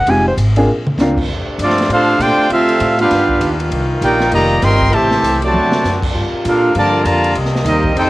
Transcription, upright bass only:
0.06 0.36 F1 medium
0.37 0.67 G#1 loud
0.69 0.97 A#1 medium
0.97 1.27 D2 loud
1.28 1.45 F2 medium
1.47 muted upright bass stroke soft
1.58 1.88 G2 medium
1.89 2.18 A2 medium
2.19 2.36 A#2 loud
2.37 muted upright bass stroke soft
2.50 2.79 D3 medium
2.80 3.10 A2 loud
3.11 3.40 G2 medium
3.41 3.70 D#2 loud
3.71 4.01 C2 medium
4.01 4.31 A#1 loud
4.32 4.62 F1 medium
4.62 4.92 G1 loud
4.92 5.22 A1 medium
5.23 5.52 C2 loud
5.54 5.71 D2 medium
5.72 muted upright bass stroke soft
5.84 6.13 F#2 loud
6.14 6.31 G2 medium
6.33 muted upright bass stroke soft
6.45 6.74 A#2 loud
6.75 7.04 G2 medium
7.04 7.34 F2 loud
7.35 7.64 C2 medium
7.65 7.95 D#2 loud
7.95 8.10 F2 medium

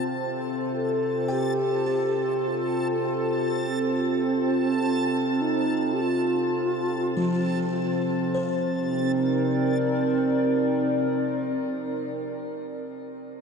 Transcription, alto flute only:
0.73 1.33 A4 loud
1.32 2.49 G4 medium
2.47 3.36 F4 medium
3.65 5.43 C4 loud
5.41 5.95 D#4 medium
5.94 6.03 G4 medium
6.01 7.77 F4 medium
8.38 11.96 C4 medium

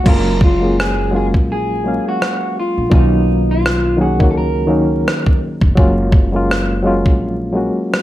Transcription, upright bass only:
0.06 1.30 F#1 loud
1.35 1.97 A#1 medium
2.78 2.90 A#1 medium
2.92 4.21 B1 loud
4.21 5.02 C#2 medium
5.62 5.75 F1 medium
5.78 7.02 F#1 loud
7.06 7.68 A#1 medium

